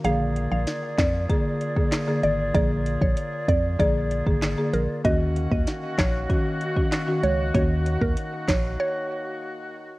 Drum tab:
HH |x-x-x-x-x-x-x-x-|x-x-x-x-x-x-x-x-|x-x-x-x-x-x-x-x-|x-x-x-x---------|
CP |------x-----x---|------------x---|------x-----x---|------x---------|
SD |----o-o-----o---|------------o---|----o-o-----o---|------o---------|
BD |------o-o--o----|o--o--o-o--o----|o--o--o-o--o----|o--o--o---------|